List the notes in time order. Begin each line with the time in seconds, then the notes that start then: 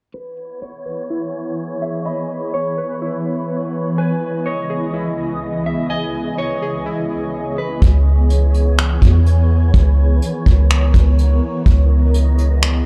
0.14 E3 B3 E4 G#4 B4 C#5 B5
0.62 C#5
0.86 B4
1.10 E4
1.82 E5
2.05 B4 D#5 B5
2.54 C#5
2.78 B4
3.02 E4
3.98 C#2 C#3 G#3 G#4 B4 D#5 G#5
4.46 C#5 D#5
4.70 G#4
4.93 E4
5.66 E5
5.90 C#5 D#5 G#5
6.38 C#5 D#5
6.62 G#4
6.86 E4
7.58 B4
7.82 C#2 E3 B3 E4 G#4 C#5, kick, closed hi-hat
8.30 closed hi-hat
8.54 closed hi-hat
8.78 finger snap, closed hi-hat
9.02 E2, kick, closed hi-hat
9.26 closed hi-hat
9.74 C#2 A#4, kick, closed hi-hat
10.22 closed hi-hat
10.46 C#2, kick, closed hi-hat
10.70 finger snap, closed hi-hat
10.94 C#2, kick, closed hi-hat
11.18 closed hi-hat
11.66 C#2 G#3 G#4 D#5, kick, closed hi-hat
12.14 closed hi-hat
12.38 closed hi-hat
12.62 finger snap, closed hi-hat